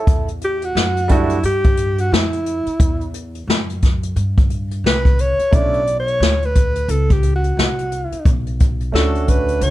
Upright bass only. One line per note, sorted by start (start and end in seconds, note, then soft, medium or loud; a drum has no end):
0.07 0.72 E2 loud
0.75 1.40 F#2 medium
1.44 2.08 G2 loud
2.12 2.64 F2 medium
2.66 muted upright bass stroke soft
2.80 3.45 E2 loud
3.47 4.13 F#2 medium
4.16 4.81 G2 medium
4.84 5.36 C2 medium
5.39 muted upright bass stroke soft
5.53 6.17 B1 loud
6.20 6.85 D2 medium
6.88 7.53 C#2 loud
7.57 8.09 C2 medium
8.12 muted upright bass stroke soft
8.25 8.90 B1 loud
8.94 9.58 D2 medium
9.61 9.70 C#2 loud